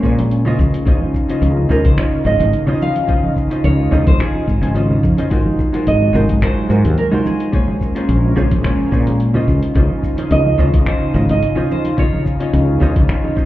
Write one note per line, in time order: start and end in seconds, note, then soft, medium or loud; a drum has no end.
0.00 0.55 A#2 medium
0.00 0.57 G#3 medium
0.00 0.57 A#3 medium
0.00 0.20 A#3 medium
0.00 0.57 C#4 loud
0.00 0.20 F4 medium
0.00 0.20 G#4 medium
0.00 kick loud
0.04 0.21 C5 medium
0.04 0.21 C#5 medium
0.04 shaker medium
0.18 closed hi-hat medium
0.18 muted conga medium
0.18 high conga medium
0.18 shaker soft
0.31 closed hi-hat soft
0.31 shaker soft
0.45 0.83 C#3 loud
0.45 0.83 C#4 medium
0.45 0.84 F4 loud
0.45 0.84 C5 medium
0.45 0.84 D#5 loud
0.45 low conga medium
0.59 0.71 C#2 loud
0.59 5.27 C#3 medium
0.59 5.27 D#4 medium
0.59 5.27 F4 medium
0.59 7.50 D#5 medium
0.59 kick medium
0.59 muted conga medium
0.59 high conga loud
0.59 shaker medium
0.74 closed hi-hat medium
0.74 shaker soft
0.85 0.99 C#2 loud
0.85 1.25 C#3 medium
0.85 1.25 C#4 medium
0.85 1.26 F4 medium
0.85 1.26 C5 medium
0.85 1.26 D#5 loud
0.85 kick loud
0.85 closed hi-hat soft
0.85 muted conga medium
0.85 shaker soft
1.01 high conga loud
1.14 kick medium
1.14 shaker medium
1.28 1.66 C#3 medium
1.28 1.67 C#4 medium
1.28 1.67 F4 medium
1.28 1.67 C5 medium
1.28 1.68 D#5 medium
1.28 closed hi-hat medium
1.28 muted conga soft
1.28 shaker soft
1.42 1.65 C#2 medium
1.42 closed hi-hat soft
1.42 high conga medium
1.42 shaker soft
1.57 muted conga medium
1.69 1.82 C#2 medium
1.69 1.94 C#3 medium
1.69 1.95 C#4 medium
1.69 1.95 F4 medium
1.69 1.86 A#4 medium
1.69 1.95 C5 medium
1.69 1.95 D#5 loud
1.69 low conga medium
1.69 shaker medium
1.84 1.95 C#2 medium
1.84 1.99 C5 medium
1.84 kick loud
1.84 closed hi-hat medium
1.84 high conga loud
1.84 shaker soft
1.97 2.22 C#3 medium
1.97 2.23 C#4 medium
1.97 2.23 F4 medium
1.97 2.23 C5 medium
1.97 2.26 C#5 loud
1.97 2.24 D#5 medium
1.97 finger snap medium
1.97 kick loud
1.97 closed hi-hat soft
1.97 muted conga medium
1.97 shaker soft
2.24 2.37 G#1 medium
2.24 2.42 C#3 medium
2.24 2.42 C#4 medium
2.24 2.42 F4 medium
2.24 2.43 C5 medium
2.24 2.78 D#5 loud
2.24 2.43 D#5 medium
2.24 muted conga medium
2.24 shaker medium
2.40 2.51 G#1 loud
2.40 closed hi-hat medium
2.40 high conga medium
2.40 shaker soft
2.53 closed hi-hat soft
2.53 shaker soft
2.67 3.05 C#3 loud
2.67 3.05 C#4 medium
2.67 3.06 F4 medium
2.67 3.06 C5 medium
2.67 3.06 D#5 loud
2.67 muted conga medium
2.67 low conga medium
2.82 3.33 F5 loud
2.82 high conga medium
2.82 shaker medium
2.96 closed hi-hat medium
2.96 muted conga medium
2.96 shaker soft
3.07 3.47 C#3 medium
3.07 3.47 C#4 medium
3.07 3.48 F4 medium
3.07 3.48 C5 medium
3.07 3.48 D#5 loud
3.07 kick loud
3.07 closed hi-hat soft
3.07 shaker soft
3.23 high conga medium
3.36 kick medium
3.36 muted conga soft
3.36 shaker medium
3.50 3.88 C#3 medium
3.50 3.89 C#4 medium
3.50 3.89 F4 medium
3.50 3.89 C5 medium
3.50 3.90 D#5 medium
3.50 closed hi-hat medium
3.50 shaker soft
3.64 3.87 C#2 medium
3.64 4.07 C#5 loud
3.64 closed hi-hat soft
3.64 muted conga medium
3.64 high conga medium
3.64 shaker soft
3.91 4.04 C#2 medium
3.91 4.16 C#3 loud
3.91 4.16 C#4 medium
3.91 4.17 F4 medium
3.91 4.17 C5 medium
3.91 4.17 D#5 loud
3.91 low conga medium
3.91 shaker medium
4.07 4.18 C#2 medium
4.07 4.19 C5 loud
4.07 kick loud
4.07 closed hi-hat medium
4.07 muted conga soft
4.07 high conga loud
4.07 shaker soft
4.18 4.44 C#3 medium
4.18 4.45 C#4 medium
4.18 4.45 F4 medium
4.18 4.72 G#4 medium
4.18 4.45 C5 medium
4.18 4.46 D#5 medium
4.18 finger snap medium
4.18 kick loud
4.18 closed hi-hat soft
4.18 shaker soft
4.35 muted conga medium
4.48 4.60 G#1 medium
4.48 kick loud
4.48 shaker medium
4.61 5.00 G#1 medium
4.61 4.72 C#3 medium
4.61 4.72 C#4 medium
4.61 4.72 F4 medium
4.61 4.73 C5 medium
4.61 4.73 G#5 medium
4.61 closed hi-hat medium
4.61 high conga medium
4.61 shaker soft
4.74 5.14 C#3 medium
4.74 5.14 C#4 medium
4.74 5.14 F4 medium
4.74 5.15 C5 medium
4.74 5.15 D#5 medium
4.74 closed hi-hat soft
4.74 muted conga medium
4.74 shaker soft
4.90 low conga medium
5.03 5.15 F2 medium
5.03 kick medium
5.03 muted conga medium
5.03 high conga loud
5.03 shaker medium
5.17 5.28 C#3 medium
5.17 5.28 C#4 medium
5.17 5.28 F4 medium
5.17 5.29 C5 medium
5.17 5.29 D#5 medium
5.17 closed hi-hat medium
5.17 shaker soft
5.30 5.43 G#1 loud
5.30 7.51 F#3 medium
5.30 5.70 G#3 medium
5.30 9.44 G#3 medium
5.30 5.70 D#4 medium
5.30 5.70 F4 medium
5.30 5.70 F#4 medium
5.30 5.71 A#4 medium
5.30 5.71 C5 loud
5.30 kick loud
5.30 closed hi-hat soft
5.30 muted conga medium
5.30 shaker soft
5.46 high conga medium
5.59 kick medium
5.59 muted conga medium
5.59 shaker medium
5.72 6.11 G#3 medium
5.72 6.11 D#4 medium
5.72 6.11 F4 medium
5.72 6.12 F#4 medium
5.72 6.12 A#4 medium
5.72 6.12 C5 medium
5.72 closed hi-hat medium
5.72 shaker soft
5.87 6.10 G#1 medium
5.87 6.39 D#5 loud
5.87 closed hi-hat soft
5.87 high conga medium
5.87 shaker soft
6.01 muted conga soft
6.13 6.27 G#1 medium
6.13 6.38 G#3 loud
6.13 6.39 D#4 medium
6.13 6.39 F4 medium
6.13 6.39 F#4 medium
6.13 6.40 A#4 loud
6.13 6.40 C5 loud
6.13 low conga medium
6.13 shaker medium
6.29 6.40 G#1 medium
6.29 kick loud
6.29 closed hi-hat medium
6.29 muted conga medium
6.29 high conga loud
6.29 shaker soft
6.41 6.67 G#3 medium
6.41 6.67 D#4 medium
6.41 6.67 F4 medium
6.41 6.68 F#4 medium
6.41 6.68 A#4 medium
6.41 7.00 C5 loud
6.41 6.68 C5 medium
6.41 finger snap medium
6.41 kick loud
6.41 closed hi-hat soft
6.41 shaker soft
6.68 6.82 G#2 loud
6.68 6.86 G#3 medium
6.68 6.86 D#4 medium
6.68 6.87 F4 medium
6.68 6.87 F#4 medium
6.68 6.87 A#4 medium
6.68 6.87 C5 medium
6.68 muted conga soft
6.68 shaker medium
6.85 6.96 D#2 loud
6.85 closed hi-hat medium
6.85 high conga medium
6.85 shaker soft
6.98 7.06 A#4 loud
6.98 closed hi-hat soft
6.98 muted conga medium
6.98 shaker soft
7.11 7.50 G#3 loud
7.11 7.50 D#4 medium
7.11 7.50 F4 loud
7.11 7.50 F#4 medium
7.11 7.51 A#4 medium
7.11 7.51 C5 loud
7.11 low conga medium
7.26 8.89 G#4 medium
7.26 high conga loud
7.26 shaker medium
7.40 closed hi-hat medium
7.40 muted conga medium
7.40 shaker soft
7.52 7.92 A#3 medium
7.52 9.46 A#3 medium
7.52 9.46 C#4 loud
7.52 7.92 F4 medium
7.52 7.92 G#4 medium
7.52 7.93 C5 medium
7.52 7.93 C#5 loud
7.52 kick loud
7.52 closed hi-hat soft
7.52 shaker soft
7.68 muted conga medium
7.68 high conga medium
7.81 kick medium
7.81 shaker medium
7.95 8.33 A#3 medium
7.95 8.33 F4 medium
7.95 8.34 G#4 medium
7.95 8.34 C5 medium
7.95 8.34 C#5 medium
7.95 closed hi-hat medium
7.95 shaker soft
8.09 8.32 A#1 medium
8.09 closed hi-hat soft
8.09 muted conga soft
8.09 high conga medium
8.09 shaker soft
8.36 8.49 A#1 medium
8.36 8.61 A#3 loud
8.36 8.61 F4 medium
8.36 8.61 G#4 medium
8.36 8.62 C5 medium
8.36 8.62 C#5 loud
8.36 muted conga medium
8.36 low conga medium
8.36 shaker medium
8.51 8.62 A#1 medium
8.51 kick loud
8.51 closed hi-hat medium
8.51 high conga medium
8.51 shaker soft
8.63 8.89 A#3 medium
8.63 8.89 F4 medium
8.63 8.90 G#4 medium
8.63 8.90 C5 medium
8.63 8.90 C#5 medium
8.63 finger snap medium
8.63 kick loud
8.63 closed hi-hat soft
8.63 shaker soft
8.80 muted conga medium
8.91 9.44 A#2 medium
8.91 9.09 A#3 medium
8.91 9.09 F4 medium
8.91 9.09 G#4 medium
8.91 9.10 C5 medium
8.91 9.10 C#5 medium
8.91 kick loud
8.91 shaker medium
9.07 closed hi-hat medium
9.07 muted conga medium
9.07 high conga medium
9.07 shaker soft
9.20 closed hi-hat soft
9.20 shaker soft
9.34 9.72 C#3 medium
9.34 9.72 C#4 medium
9.34 9.73 F4 medium
9.34 9.73 C5 medium
9.34 9.73 D#5 loud
9.34 low conga medium
9.48 9.60 C#2 loud
9.48 13.45 C#3 medium
9.48 13.45 D#4 medium
9.48 13.45 F4 medium
9.48 13.45 D#5 medium
9.48 kick medium
9.48 muted conga medium
9.48 high conga medium
9.48 shaker medium
9.63 closed hi-hat medium
9.63 shaker soft
9.74 9.88 C#2 loud
9.74 10.14 C#3 medium
9.74 10.14 C#4 medium
9.74 10.15 F4 medium
9.74 10.15 C5 medium
9.74 10.15 D#5 loud
9.74 kick loud
9.74 closed hi-hat soft
9.74 muted conga medium
9.74 shaker soft
9.90 high conga medium
10.03 kick medium
10.03 shaker medium
10.17 10.55 C#3 medium
10.17 10.55 C#4 medium
10.17 10.56 F4 medium
10.17 10.56 C5 medium
10.17 10.56 D#5 medium
10.17 closed hi-hat medium
10.17 muted conga medium
10.17 shaker soft
10.31 10.54 C#2 medium
10.31 10.83 D#5 loud
10.31 closed hi-hat soft
10.31 high conga medium
10.31 shaker soft
10.46 muted conga medium
10.58 10.71 C#2 medium
10.58 10.83 C#3 loud
10.58 10.83 C#4 medium
10.58 10.84 F4 medium
10.58 10.84 C5 medium
10.58 10.84 D#5 loud
10.58 low conga medium
10.58 shaker medium
10.73 10.84 C#2 medium
10.73 kick loud
10.73 closed hi-hat medium
10.73 high conga medium
10.73 shaker soft
10.85 11.11 C#3 medium
10.85 11.12 C#4 medium
10.85 11.12 F4 medium
10.85 11.12 C5 medium
10.85 11.27 C5 loud
10.85 11.12 D#5 medium
10.85 finger snap medium
10.85 kick loud
10.85 closed hi-hat soft
10.85 muted conga medium
10.85 shaker soft
11.13 11.26 G#1 loud
11.13 11.31 C#3 medium
11.13 11.31 C#4 medium
11.13 11.31 F4 medium
11.13 11.32 C5 medium
11.13 11.32 D#5 medium
11.13 muted conga medium
11.13 shaker medium
11.29 11.40 G#1 loud
11.29 11.68 D#5 loud
11.29 closed hi-hat medium
11.29 high conga medium
11.29 shaker soft
11.43 closed hi-hat soft
11.43 shaker soft
11.55 11.94 C#3 loud
11.55 11.94 C#4 medium
11.55 11.95 F4 medium
11.55 11.95 C5 medium
11.55 11.95 D#5 loud
11.55 muted conga medium
11.55 low conga medium
11.71 11.99 C5 medium
11.71 high conga medium
11.71 shaker medium
11.84 closed hi-hat medium
11.84 muted conga medium
11.84 shaker soft
11.97 12.36 C#3 medium
11.97 12.37 C#4 medium
11.97 12.37 F4 medium
11.97 12.37 C#5 medium
11.97 13.45 C#5 loud
11.97 12.38 D#5 loud
11.97 kick loud
11.97 closed hi-hat soft
11.97 shaker soft
12.13 high conga medium
12.26 kick medium
12.26 muted conga medium
12.26 shaker medium
12.40 12.78 C#3 medium
12.40 12.78 C#4 medium
12.40 12.78 F4 medium
12.40 12.79 C#5 medium
12.40 12.79 D#5 medium
12.40 closed hi-hat medium
12.40 shaker soft
12.53 12.76 C#2 medium
12.53 closed hi-hat soft
12.53 muted conga medium
12.53 high conga medium
12.53 shaker soft
12.80 12.93 C#2 medium
12.80 13.05 C#3 loud
12.80 13.06 C#4 loud
12.80 13.06 F4 medium
12.80 13.06 C5 medium
12.80 13.07 D#5 loud
12.80 low conga medium
12.80 shaker medium
12.96 13.07 C#2 medium
12.96 kick loud
12.96 closed hi-hat medium
12.96 muted conga medium
12.96 high conga loud
12.96 shaker soft
13.08 13.34 C#3 medium
13.08 13.34 C#4 medium
13.08 13.34 F4 medium
13.08 13.35 C5 medium
13.08 13.35 D#5 medium
13.08 finger snap medium
13.08 kick loud
13.08 closed hi-hat soft
13.08 shaker soft
13.24 muted conga medium
13.35 13.45 C#3 medium
13.35 13.45 C#4 medium
13.35 13.45 F4 medium
13.35 13.45 C5 medium
13.35 13.45 D#5 medium
13.35 kick loud
13.35 shaker medium